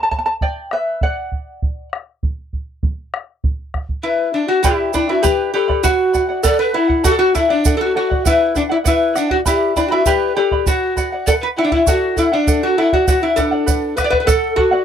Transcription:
0.03 A5
0.11 A5, bombo low
0.19 A5
0.26 A5
0.41 D5 G5, bombo low
0.71 B4 E5, bombo rim
1.01 D5 F#5, bombo low
1.32 bombo low
1.62 bombo low
1.93 bombo rim
2.23 bombo low
2.53 bombo low
2.83 bombo low
3.14 bombo rim
3.44 bombo low
3.74 bombo rim, bombo low
3.89 bombo low
4.03 E4 B4
4.33 D4
4.48 F#4
4.63 E4 G4 B4 D5 G5 B5, bombo low, shaker
4.93 D4 E4 B4 D5 G5 B5, bombo low, shaker
5.08 E4 F#4 B4 D5 B5
5.22 G4 B4 D5 G5 B5, bombo low, shaker
5.53 G4 A4 B4 D5 G5 B5
5.68 B4 D5 B5, bombo low
5.83 F#4 B4 D5 F#5, bombo low, shaker
6.13 B4 D5 F#5, bombo low, shaker
6.29 D5 F#5
6.43 A4 B4 D5 F#5, bombo low, shaker
6.59 B4
6.73 E4 B4 D5 F#5
6.89 D5 F#5, bombo low
7.03 F#4 A4 D5 F#5, bombo low, shaker
7.11 A4
7.18 F#4
7.34 E4 A4 D5 F#5, bombo low, shaker
7.49 D4 D5 F#5
7.65 A4 D5 F#5, bombo low, shaker
7.77 A4
7.81 F#4
7.95 F#4 A4 D5 F#5
8.10 D5 F#5, bombo low
8.25 E4 B4 D5 F#5, bombo low, shaker
8.55 D4 B4 D5 F#5, bombo low, shaker
8.70 E4 D5 F#5
8.84 E4 B4 D5 F#5, bombo low, shaker
9.14 D4 B4 D5 F#5, bombo rim, shaker
9.30 F#4 D5 F#5, bombo low
9.46 E4 G4 B4 D5 G5 B5, bombo low, shaker
9.75 D4 E4 B4 D5 G5 B5, bombo low, shaker
9.87 F#4 G4
9.91 E4 B4 D5 B5
10.05 G4 B4 D5 G5 B5, bombo low, shaker
10.35 G4 A4 B4 D5 G5 B5
10.51 B4 D5 B5, bombo low
10.65 F#4 B4 D5 F#5, bombo low, shaker
10.97 B4 D5 F#5, bombo low, shaker
11.12 D5 F#5
11.26 A4 B4 D5 F#5, bombo low, shaker
11.40 B4
11.56 E4 B4 D5 F#5
11.63 D4
11.72 E4 D5 F#5, bombo low
11.87 F#4 A4 D5 F#5, bombo low, shaker
12.16 E4 A4 D5 F#5, bombo low, shaker
12.32 D4 D5 F#5
12.47 A4 D5 F#5, bombo low, shaker
12.63 F#4
12.77 E4 A4 D5 F#5
12.93 F#4 D5 F#5, bombo low
13.08 F#4 B4 D5 F#5, bombo low, shaker
13.23 E4
13.36 D4 A4 B4 D5 F#5, bombo low, shaker
13.51 D5 F#5
13.66 B4 D5 F#5, bombo low, shaker
13.96 B4 D5 F#5, bombo rim, bombo low, shaker
14.04 D5
14.09 B4 D5 F#5, bombo low
14.20 B4
14.26 A4 D5 F#5, bombo low, shaker
14.56 F#4 A4 D5 F#5, bombo low
14.71 D5 F#5

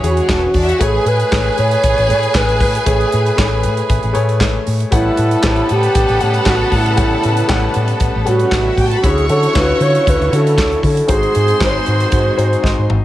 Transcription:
Already playing: E3 C#4 F#4 G#4 B4 C#5 B5
0.02 E2 E3 C#4 F#4 G#4, closed hi-hat
0.08 F#4
0.17 G#3 G#4, closed hi-hat
0.28 E1 A3 A4, kick, snare, clap
0.37 B3 B4
0.46 C#4 C#5
0.54 E2 D4 D5, kick, open hi-hat
0.63 E4 E5
0.69 F#4 F#5, closed hi-hat
0.79 A1 A3 E4 G#4 B4 C#5 G#5, kick, closed hi-hat
0.84 G#4
1.06 A2 B4, closed hi-hat
1.20 closed hi-hat
1.31 A1 A3 G#4 B4 C#5, kick, snare, clap
1.58 A2 C#5, closed hi-hat
1.71 closed hi-hat
1.83 A1, kick, closed hi-hat
1.98 A1, closed hi-hat
2.08 A2 A3 G#4 B4 C#5, closed hi-hat
2.23 closed hi-hat
2.35 A1 B4, kick, snare, clap
2.48 closed hi-hat
2.60 A2, kick, open hi-hat
2.75 closed hi-hat
2.86 A1 A3 G#4 B4 C#5, kick, closed hi-hat
3.01 closed hi-hat
3.12 A2, closed hi-hat
3.26 closed hi-hat
3.36 A1 A3 G#4 B4 C#5, kick, snare, clap
3.63 A2, closed hi-hat
3.77 closed hi-hat
3.90 A1, kick, closed hi-hat
4.03 A1, closed hi-hat
4.13 A2 A3 G#4 B4 C#5, closed hi-hat
4.29 closed hi-hat
4.40 A1, kick, snare, clap
4.67 A2, open hi-hat
4.80 closed hi-hat
4.91 A1 C#3 G3 A3 B3 E4 G4 A4 B4 C#5 F#5 A5, kick, closed hi-hat
5.17 A2, closed hi-hat
5.31 closed hi-hat
5.43 A1 A3 G4 B4 C5 A5, kick, snare, clap
5.50 C#5
5.56 closed hi-hat
5.69 A2 G4, closed hi-hat
5.83 closed hi-hat
5.95 A1, kick, closed hi-hat
6.09 A1, closed hi-hat
6.19 A2 A3 G4 B4 C#5 F#5, closed hi-hat
6.34 closed hi-hat
6.46 A1 F#4, kick, snare, clap
6.72 A2, kick, open hi-hat
6.76 E4
6.86 closed hi-hat
6.96 A1 A3 G4 B4 C#5 F#5, kick, closed hi-hat
7.23 A2, closed hi-hat
7.37 closed hi-hat
7.48 A1 A3 G4 B4 C#5 F#5, kick, snare, clap
7.74 A2, closed hi-hat
7.88 closed hi-hat
8.00 A1, kick, closed hi-hat
8.16 A1
8.25 A2 G3 A3 B4 C#5 F#5, closed hi-hat
8.29 F#4
8.39 C#4 C#5, closed hi-hat
8.51 A1 D4 D5, kick, snare, clap
8.61 E4 E5
8.69 F#4 F#5
8.77 A2 G4 G5, kick, open hi-hat
8.87 A4 A5
8.91 B4, closed hi-hat
8.96 B5
9.02 D2 D3 F#3 C#4 E4 F#4 G#4 A4 C#5 C#6, kick, closed hi-hat
9.18 closed hi-hat
9.29 D3 A4, closed hi-hat
9.43 closed hi-hat
9.53 D2 D3 C#4 E4 F4 B4, kick, snare, clap
9.61 F#4
9.80 D3 C#5, closed hi-hat
9.95 closed hi-hat
10.07 D2 B4, kick, closed hi-hat
10.20 D2, closed hi-hat
10.31 D3 C#4 E4 F#4, closed hi-hat
10.35 A4
10.47 closed hi-hat
10.58 D2, kick, snare, clap
10.72 closed hi-hat
10.83 D3 A4, kick, open hi-hat
10.97 closed hi-hat
11.07 G#1 D#3 G#3 C4 D#4 F#4 G#4 C5 C6, kick, closed hi-hat
11.11 G#4
11.23 closed hi-hat
11.35 G#2, closed hi-hat
11.48 closed hi-hat
11.59 G#1 G#3 D#4 F#4 B4, kick, snare, clap
11.64 C5
11.70 C#5
11.77 C5
11.86 G#2, closed hi-hat
12.00 closed hi-hat
12.12 G#2, kick, closed hi-hat
12.37 G#2 G#3 D#4 F#4 C5, closed hi-hat
12.53 closed hi-hat
12.63 G#1 D#5, kick, snare
12.78 G#2
12.90 G#1, mid tom

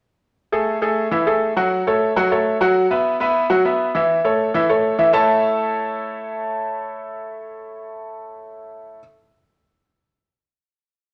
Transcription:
0.52 A3 G#4 A4
0.81 A3 G#4 A4
1.11 E3 E4 E5
1.26 A3 G#4 A4
1.57 F#3 F#4 F#5
1.87 A3 A4 C#5
2.16 F#3 F#4 F#5
2.31 A3 A4 C#5
2.61 F#3 F#4 F#5
2.90 B3 B4 E5
3.20 B3 B4 E5
3.50 F#3 F#4 F#5
3.65 B3 B4 E5
3.95 E3 E4 E5
4.24 A3 A4 C#5
4.54 E3 E4 E5
4.69 A3 A4 C#5
4.99 E3 E4 E5
5.13 A3 E4 A4 C#5 E5 A5

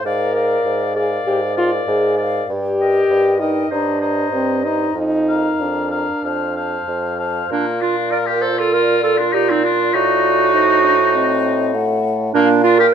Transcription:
0.05 G#2 A#4 D5 F5
0.34 A#4 D5 F5
0.65 G#2
0.94 G#4 A#4 D5 F5
1.27 G#2 G4
1.56 F4 A#4 D5 F5
1.87 G#2 G#4
2.18 A#4 D5 F5
2.50 G2 G4
2.80 A#4 D#5 G5
3.10 G2
3.40 D#4 A#4 D#5 G5
3.70 G2 D4 C5 D#5 A#5
4.01 C5 D#5 A#5
4.32 G2 C4
4.64 D#4 C5 D#5 A#5
4.95 F2 D#4
5.28 A#4 F5 A#5
5.60 F2 D4
5.92 A#4 F5 A#5
6.24 F2 C5 F5 A5
6.56 C5 F5 A5
6.88 F2
7.18 C5 F5 A5
7.50 A#2 A#3 D4 F4 F5
7.81 D4 F4
8.12 A#4 D5
8.27 G4 A#4
8.42 A4 C5
8.59 F4 A4
8.73 F4 A#4 D5
9.03 F4 A4
9.18 D4 F4
9.32 D#4 G4 D5
9.49 C4 D#4
9.64 D4 F4
9.94 A2 D#4 F#4 D5
10.54 D#4 C5
10.84 D4
11.14 C4 D#5
11.74 A3 F#5
12.34 A#2 A#3 D4 F5
12.64 D4 F4
12.79 G4 A#4

